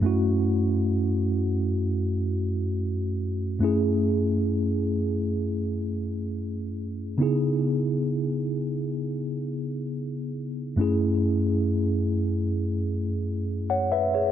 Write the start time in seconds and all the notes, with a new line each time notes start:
0.01 F#2 A3 C#4 E4
0.06 F#4
3.59 F#2 A3 C#4 E4
3.64 G#4
7.18 C#3 B3 D#4 E4
7.23 G#4
10.76 F#2 A3 C#4 E4
10.81 G#4
13.70 C#5 F#5
13.92 B4 E5
14.14 G#4 C#5